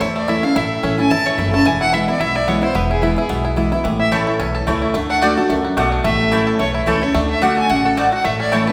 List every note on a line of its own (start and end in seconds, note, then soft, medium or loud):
0.00 0.53 E2 medium
0.00 0.40 E2 medium
0.00 0.13 C#4 medium
0.00 0.28 E4 medium
0.00 0.26 A4 medium
0.00 0.16 C#5 medium
0.16 0.42 A3 medium
0.16 0.30 D5 medium
0.28 0.43 E3 medium
0.28 0.43 A3 medium
0.28 0.43 C#4 medium
0.28 0.55 E4 medium
0.28 0.42 E4 medium
0.28 0.46 E5 medium
0.43 0.81 A3 medium
0.43 0.56 C#4 soft
0.43 0.55 E4 medium
0.43 0.59 F5 loud
0.56 0.76 A1 medium
0.56 1.08 A2 medium
0.56 1.11 E4 medium
0.56 0.98 E5 medium
0.83 1.07 A1 medium
0.83 0.98 E3 medium
0.83 0.98 A3 medium
0.83 1.23 C#4 medium
0.83 0.98 C#4 medium
0.83 0.97 E4 medium
0.98 1.11 C#4 soft
0.98 1.10 E4 medium
0.98 1.36 A4 medium
0.98 1.12 G#5 loud
1.11 1.34 G#1 medium
1.11 1.63 E2 medium
1.11 1.38 E4 medium
1.11 1.27 A5 loud
1.26 1.53 A3 medium
1.26 1.39 C#5 medium
1.38 1.61 F#1 medium
1.38 1.53 E3 medium
1.38 1.53 A3 medium
1.38 1.53 C#4 medium
1.38 1.81 E4 medium
1.38 1.52 E4 medium
1.38 1.52 E5 medium
1.53 1.66 A3 medium
1.53 1.66 C#4 medium
1.53 1.65 E4 medium
1.53 1.68 A5 loud
1.65 2.05 E1 medium
1.65 2.18 E2 medium
1.65 3.06 E3 medium
1.65 1.80 G#5 medium
1.81 1.92 E4 medium
1.81 1.95 F#5 loud
1.93 2.08 E3 medium
1.93 2.08 G#3 medium
1.93 2.08 B3 medium
1.93 2.08 E4 medium
1.93 2.07 E4 medium
1.93 2.08 E5 medium
2.08 2.21 B3 soft
2.08 2.20 E4 medium
2.08 2.21 E4 medium
2.08 2.22 D5 medium
2.20 2.60 B1 medium
2.20 2.73 B2 medium
2.20 2.36 E4 medium
2.20 2.37 E5 medium
2.36 2.63 E4 medium
2.36 2.50 D5 medium
2.47 2.62 E3 medium
2.47 2.62 G#3 medium
2.47 2.74 B3 medium
2.47 2.63 B3 medium
2.47 2.61 E4 medium
2.47 2.62 C#5 medium
2.62 2.75 B3 soft
2.62 2.74 E4 medium
2.62 2.90 E4 medium
2.62 2.77 C5 medium
2.75 3.15 E1 medium
2.75 3.27 E2 medium
2.75 3.15 B3 medium
2.75 2.90 B4 medium
2.91 3.02 E4 medium
2.91 3.04 G#4 medium
3.02 3.17 E3 medium
3.02 3.17 G#3 medium
3.02 3.17 B3 medium
3.02 3.16 E4 medium
3.02 3.17 E4 medium
3.02 3.15 E4 medium
3.16 3.30 B3 soft
3.16 3.29 E4 medium
3.16 3.43 E4 medium
3.16 3.43 G#4 medium
3.29 3.70 B1 medium
3.29 3.82 B2 medium
3.29 3.70 B3 medium
3.45 3.56 E4 medium
3.56 3.72 E3 medium
3.56 3.72 G#3 medium
3.56 3.72 B3 medium
3.56 3.71 E4 medium
3.72 3.85 B3 soft
3.72 3.85 E4 medium
3.72 3.84 E4 medium
3.84 4.24 A1 medium
3.84 4.37 A2 medium
3.84 4.24 E3 medium
4.00 4.26 E4 medium
4.00 4.14 E5 medium
4.11 4.38 E3 medium
4.11 4.22 A3 medium
4.11 4.39 A3 medium
4.11 4.39 C#4 medium
4.11 4.22 E4 medium
4.11 4.39 E4 medium
4.11 4.54 A4 medium
4.11 4.22 C#5 medium
4.11 4.40 C#5 medium
4.11 4.22 A5 medium
4.27 4.65 E4 medium
4.40 4.63 B1 medium
4.40 4.92 E2 medium
4.40 4.79 C#4 medium
4.55 5.37 A4 medium
4.67 4.91 C#2 medium
4.67 4.93 E3 medium
4.67 4.77 A3 medium
4.67 4.94 A3 medium
4.67 4.94 C#4 medium
4.67 4.77 E4 medium
4.67 4.94 E4 medium
4.67 4.78 C#5 loud
4.67 4.78 A5 medium
4.82 4.94 E4 medium
4.94 5.34 D2 medium
4.94 5.21 D3 medium
4.94 5.49 A3 medium
5.10 5.47 D4 medium
5.10 5.24 F#5 loud
5.22 5.37 D3 medium
5.22 5.32 A3 medium
5.22 5.37 A3 medium
5.22 5.38 D4 medium
5.22 5.62 F#4 medium
5.22 5.32 F#4 medium
5.22 5.36 F#4 medium
5.22 5.50 D5 medium
5.22 5.32 D5 loud
5.22 5.33 F#5 loud
5.37 5.50 D4 soft
5.37 5.49 F#4 medium
5.37 6.46 A4 medium
5.50 5.73 C#2 medium
5.50 5.76 F#2 medium
5.50 5.77 A3 medium
5.65 6.02 F#4 medium
5.77 6.01 B1 medium
5.77 6.04 B2 medium
5.77 5.87 A3 medium
5.77 6.04 A3 medium
5.77 5.87 F#4 medium
5.77 5.87 D5 medium
5.77 5.88 F#5 loud
5.92 6.05 D4 medium
6.04 6.44 A1 medium
6.04 6.57 A2 medium
6.04 6.59 A3 medium
6.04 6.47 E5 medium
6.31 6.59 E3 medium
6.31 6.42 A3 medium
6.31 6.59 A3 medium
6.31 6.59 C#4 medium
6.31 6.72 E4 medium
6.31 6.42 E4 medium
6.31 6.60 E4 medium
6.31 6.42 C#5 loud
6.31 6.43 A5 medium
6.47 6.87 A4 medium
6.59 6.83 B1 medium
6.59 7.12 E2 medium
6.59 7.14 A3 medium
6.59 6.74 C#5 medium
6.74 7.01 E4 medium
6.74 6.90 E4 medium
6.86 7.11 C#2 medium
6.86 7.01 E3 medium
6.86 6.97 A3 medium
6.86 7.02 A3 medium
6.86 7.02 C#4 medium
6.86 6.97 E4 medium
6.86 7.00 E4 medium
6.86 7.57 A4 medium
6.86 7.04 A4 medium
6.86 6.98 C#5 loud
6.86 6.98 A5 loud
7.02 7.15 C#4 soft
7.02 7.14 E4 medium
7.02 7.14 E4 soft
7.02 7.17 C#5 medium
7.14 7.54 D2 medium
7.14 7.40 D3 medium
7.14 7.54 A3 medium
7.14 7.30 D5 medium
7.30 7.44 E5 medium
7.42 7.68 D3 medium
7.42 7.52 A3 medium
7.42 7.69 A3 medium
7.42 7.69 D4 medium
7.42 7.82 F#4 medium
7.42 7.52 F#4 loud
7.42 7.69 F#4 medium
7.42 7.53 D5 loud
7.42 7.57 F#5 medium
7.42 7.53 F#5 loud
7.57 7.95 A4 medium
7.57 7.71 G#5 loud
7.69 8.10 A1 medium
7.69 7.96 C#3 medium
7.69 8.10 A3 medium
7.69 7.87 F#5 medium
7.85 8.11 F#4 medium
7.85 7.99 A4 medium
7.97 8.24 G#2 medium
7.97 8.07 A3 medium
7.97 8.08 F#4 medium
7.97 8.25 A4 medium
7.97 8.13 D5 medium
7.97 8.08 D5 medium
7.97 8.08 F#5 loud
8.12 8.25 F#4 medium
8.12 8.27 F#5 loud
8.24 8.65 A1 medium
8.24 8.72 A2 medium
8.24 8.65 A3 medium
8.24 8.40 E5 medium
8.40 8.72 C#4 medium
8.40 8.55 D5 medium
8.52 8.67 E3 medium
8.52 8.62 A3 loud
8.52 8.68 A3 medium
8.52 8.68 C#4 medium
8.52 8.72 E4 medium
8.52 8.62 E4 medium
8.52 8.66 E4 medium
8.52 8.63 C#5 medium
8.52 8.67 C#5 medium
8.52 8.63 A5 medium
8.67 8.72 E4 medium
8.67 8.72 A4 medium
8.67 8.72 B4 medium